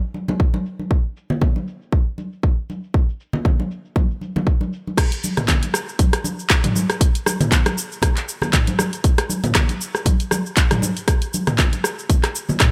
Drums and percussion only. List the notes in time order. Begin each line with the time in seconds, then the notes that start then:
0.14 high conga, cabasa
0.28 high conga, low conga, cabasa
0.40 kick
0.54 high conga
0.66 cabasa
0.79 high conga, cabasa
0.91 kick
1.17 cabasa
1.30 low conga, cabasa
1.41 kick, low conga
1.56 high conga, cabasa
1.68 cabasa
1.82 cabasa
1.92 kick, cabasa
2.18 high conga, cabasa
2.33 cabasa
2.43 kick, cabasa
2.70 high conga, cabasa
2.84 cabasa
2.94 kick, cabasa
3.09 cabasa
3.20 cabasa
3.33 low conga, cabasa
3.45 kick, low conga, cabasa
3.60 high conga, cabasa
3.71 cabasa
3.85 cabasa
3.96 kick, high conga, low conga, cabasa
4.11 cabasa
4.21 high conga, cabasa
4.36 high conga, low conga, cabasa
4.47 kick, cabasa
4.61 high conga, cabasa
4.73 cabasa
4.87 high conga, cabasa
4.97 kick, cross-stick, closed hi-hat, crash, cabasa
5.12 closed hi-hat, cabasa
5.24 high conga, cabasa
5.37 cross-stick, closed hi-hat, mid tom, low conga, cabasa
5.48 kick, clap, closed hi-hat, low conga, cabasa
5.63 closed hi-hat, high conga, cabasa
5.74 cross-stick, cabasa
5.89 cabasa
5.99 kick, closed hi-hat, high conga, cabasa
6.13 cross-stick, closed hi-hat, cabasa
6.24 high conga, cabasa
6.39 cabasa
6.50 kick, cross-stick, clap, closed hi-hat, cabasa
6.64 closed hi-hat, mid tom, high conga, cabasa
6.76 high conga, cabasa
6.90 cross-stick, closed hi-hat, cabasa
7.01 kick, closed hi-hat, cabasa
7.15 closed hi-hat, cabasa
7.26 cross-stick, high conga, cabasa
7.40 closed hi-hat, mid tom, low conga, cabasa
7.52 kick, clap, closed hi-hat, low conga, cabasa
7.66 cross-stick, closed hi-hat, high conga, cabasa
7.78 cabasa
7.92 cabasa
8.02 kick, cross-stick, closed hi-hat, low conga, cabasa
8.17 clap, closed hi-hat, cabasa
8.29 cabasa
8.42 cross-stick, high conga, low conga, cabasa
8.53 kick, clap, closed hi-hat, mid tom, cabasa
8.67 closed hi-hat, high conga, cabasa
8.79 cross-stick, high conga, cabasa
8.93 closed hi-hat, cabasa
9.04 kick, closed hi-hat, cabasa
9.18 cross-stick, closed hi-hat, cabasa
9.30 high conga, cabasa
9.44 closed hi-hat, mid tom, low conga, cabasa
9.55 kick, cross-stick, clap, closed hi-hat, low conga, cabasa
9.69 closed hi-hat, high conga, cabasa
9.81 cabasa
9.95 cross-stick, cabasa
10.06 kick, closed hi-hat, high conga, cabasa
10.20 closed hi-hat, cabasa
10.31 cross-stick, high conga, cabasa
10.46 cabasa
10.57 kick, clap, closed hi-hat, cabasa
10.71 cross-stick, closed hi-hat, mid tom, high conga, cabasa
10.82 high conga, cabasa
10.97 closed hi-hat, cabasa
11.08 kick, cross-stick, closed hi-hat, cabasa
11.22 closed hi-hat, cabasa
11.34 high conga, cabasa
11.47 cross-stick, closed hi-hat, mid tom, low conga, cabasa
11.58 kick, clap, closed hi-hat, low conga, cabasa
11.73 closed hi-hat, high conga, cabasa
11.84 cross-stick, cabasa
11.99 cabasa
12.10 kick, closed hi-hat, low conga, cabasa
12.24 cross-stick, clap, closed hi-hat, cabasa
12.35 cabasa
12.49 high conga, low conga, cabasa
12.60 kick, cross-stick, clap, closed hi-hat, mid tom, cabasa